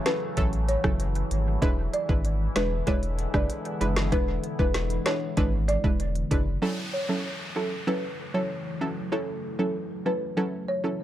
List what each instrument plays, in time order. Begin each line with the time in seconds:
Already playing: ambient pad C#3 E3 F#3 A3 E4
0.06 synth pluck F#3 C#4 E4 A4, marimba B4, snare, closed hi-hat
0.37 sub bass A1, synth pluck F#3 C#4 E4 A4, kick, closed hi-hat
0.53 closed hi-hat
0.68 marimba C#5, closed hi-hat
0.84 sub bass F#1, synth pluck F#3 C#4 E4 A4, kick, cross-stick
1.00 closed hi-hat
1.15 closed hi-hat
1.31 sub bass G#1, closed hi-hat
1.62 sub bass E1, ambient pad D3 G#3 B3 E4, synth pluck G#3 D4 E4 B4, kick, closed hi-hat
1.93 marimba D5, closed hi-hat
2.09 sub bass G#1, synth pluck G#3 D4 E4 B4, kick
2.25 closed hi-hat
2.56 sub bass E1, synth pluck G#3 D4 E4 B4, marimba B4, snare, closed hi-hat
2.87 sub bass E1, synth pluck G#3 D4 E4 B4, marimba C#5, kick, closed hi-hat
3.03 closed hi-hat
3.19 closed hi-hat
3.34 sub bass F#1, synth pluck G#3 D4 E4 B4, marimba D5, kick, cross-stick
3.50 closed hi-hat
3.65 closed hi-hat
3.81 sub bass F#1, synth pluck G#3 D4 E4 B4, closed hi-hat
3.96 snare
4.12 sub bass E1, synth pluck G#3 D4 E4 B4, marimba B4, kick, closed hi-hat
4.44 closed hi-hat
4.59 sub bass E1, synth pluck G#3 D4 E4 B4, marimba B4, kick
4.74 snare, closed hi-hat
4.90 closed hi-hat
5.06 synth pluck G#3 D4 E4 B4, marimba C#5, snare, closed hi-hat
5.37 sub bass G#1, synth pluck G#3 D4 E4 B4, kick, closed hi-hat
5.68 marimba D5, closed hi-hat
5.84 sub bass E1, synth pluck G#3 D4 E4 B4, kick
6.00 closed hi-hat
6.15 closed hi-hat
6.31 sub bass F#1, synth pluck G#3 D4 E4 B4, kick, closed hi-hat
6.62 ambient pad C#3 E3 F#3 A3 E4, synth pluck F#3 C#4 E4 A4, downlifter
6.93 marimba C#5
7.09 synth pluck F#3 C#4 E4 A4
7.56 synth pluck F#3 C#4 E4 A4, marimba A4
7.87 synth pluck F#3 C#4 E4 A4, marimba B4
8.34 synth pluck F#3 C#4 E4 A4, marimba C#5
8.81 synth pluck F#3 C#4 E4 A4
9.12 synth pluck F#3 C#4 E4 A4, marimba A4
9.59 synth pluck F#3 C#4 E4 A4, marimba A4
10.05 synth pluck F#3 C#4 E4 A4, marimba B4
10.37 synth pluck F#3 C#4 E4 A4
10.68 marimba C#5
10.84 synth pluck F#3 C#4 E4 A4